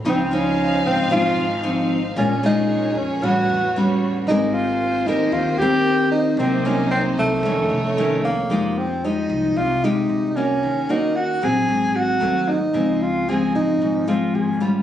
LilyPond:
<<
  \new Staff \with { instrumentName = "String section" } { \time 4/4 \key f \phrygian \tempo 4 = 113 << { f''1 | des''1 | c''1 | c''2 des''2 |
\key f \minor r1 | r1 | r1 | } \\ { <ees' c''>1 | <bes aes'>2 <b fis'>2 | bes1 | <bes ees'>2 <a ees'>2 |
r1 | r1 | r1 | } >> }
  \new Staff \with { instrumentName = "Tenor saxophone" } { \time 4/4 \key f \phrygian c'8 des'4 c'8 f'4 r4 | des'8 ees'4 des'8 fis'4 r4 | ees'8 f'4 ees'8 f'8 g'4 ees'8 | c'8 des'8 c'8 a2 bes8~ |
\key f \minor bes8 c'8 ees'4 f'8 ees'4 des'8~ | des'8 ees'8 ges'8 aes'4 ges'4 ees'8~ | ees'8 f'8 aes'8 ees'4 f'8 aes'8 r8 | }
  \new Staff \with { instrumentName = "Nylon-string guitar" } { \time 4/4 \key f \phrygian << { <f c' ees'>8 <f ees'>4. <f c' ees'>8 r8 <f c' ees'>8 r8 | <aes des' f'>8 <aes des' f'>4. <g cis' fis'>8 r8 <g cis' fis'>4 | <c' g' bes'>4. <c' g' bes'>4 <c' g' bes'>4. | <ges bes ees'>8 <ges bes ees'>4. <ees a des'>8 r8 <ees a des'>8 r8 |
\key f \minor <aes ees' g'>8 r8 <aes ees' g'>4. <aes ees' g'>4 <bes des' ges'>8~ | <bes des' ges'>8 <bes des' ges'>4 <ges c'>4. <ges a c'>8 r8 | <f aes c'>4 <f aes c'>4. <f aes c'>4 <g des' f'>8 | } \\ { des2 aes,2 | bes,2 a,2 | aes2 ees2 | c2 f,2 |
f2 c2 | ees2 aes,2 | des2 aes,2 | } >> }
  \new Staff \with { instrumentName = "Upright bass" } { \clef bass \time 4/4 \key f \phrygian des,4. aes,,8 aes,,8 aes,,4. | bes,,4. f,8 a,,8 e,4. | aes,,4. ees,8 ees,8 ees,4. | c,4. c,8 f,8 c,4. |
\key f \minor f,4. c,8 c,4 c,4 | ees,4. bes,,8 aes,,4 ees,4 | des,4. aes,,8 aes,,4 aes,,4 | }
>>